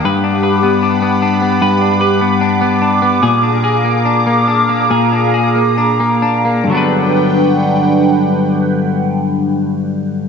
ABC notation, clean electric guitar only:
X:1
M:4/4
L:1/16
Q:1/4=70
K:G
V:1 name="Clean electric guitar"
[G,,B] D B B, D B, D B, [G,,B] D B B, D B, D B, | [_B,,_A] D A _B, D B, D B, [B,,A] D A B, D B, D B, | [G,,D,F,B,DB]16 |]